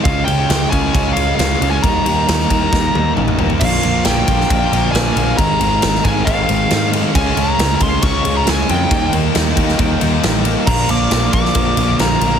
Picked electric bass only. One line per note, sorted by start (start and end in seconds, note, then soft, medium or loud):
0.05 0.21 C#2 loud
0.27 0.43 C#2 medium
0.50 0.65 C#2 loud
0.72 0.88 C#2 medium
0.94 1.10 C#2 medium
1.16 1.32 C#2 medium
1.39 1.55 C#2 loud
1.62 1.77 C#2 loud
1.83 1.99 D#2 medium
2.06 2.22 D#2 medium
2.29 2.44 D#2 medium
2.50 2.66 D#2 medium
2.72 2.88 D#2 loud
2.95 3.11 D#2 loud
3.18 3.48 A1 loud
3.61 3.77 A#1 medium
3.84 3.99 A#1 medium
4.06 4.22 A#1 medium
4.28 4.43 A#1 medium
4.50 4.66 A#1 loud
4.72 4.87 A#1 medium
4.94 5.10 A#1 loud
5.16 5.32 A#1 loud
5.38 5.54 G#1 medium
5.61 5.76 G#1 medium
5.83 5.98 G#1 medium
6.05 6.20 G#1 medium
6.27 6.42 G#1 medium
6.49 6.64 G#1 loud
6.72 7.03 G#2 medium
7.15 7.30 C#2 medium
7.37 7.53 C#2 medium
7.59 7.74 C#2 medium
7.81 7.96 C#2 medium
8.03 8.18 C#2 loud
8.26 8.41 C#2 loud
8.48 8.63 C#2 medium
8.70 8.85 F2 loud
8.91 9.06 D#2 loud
9.13 9.28 D#2 medium
9.36 9.51 D#2 loud
9.57 9.72 D#2 loud
9.79 9.94 D#2 loud
10.02 10.17 D#2 medium
10.24 10.55 A1 loud
10.67 10.83 A#1 loud
10.90 11.05 A#1 medium
11.11 11.27 A#1 loud
11.33 11.49 A#1 loud
11.55 11.71 A#1 medium
11.77 11.93 A#1 loud
11.99 12.15 A#1 loud
12.22 12.37 A#1 loud